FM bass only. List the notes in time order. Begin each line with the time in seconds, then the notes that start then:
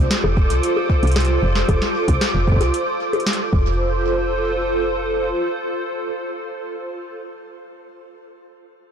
0.24 F1
0.50 C2
1.03 C2
1.42 F1
1.69 F1
2.08 C2
2.34 F1
2.61 C2
3.53 F1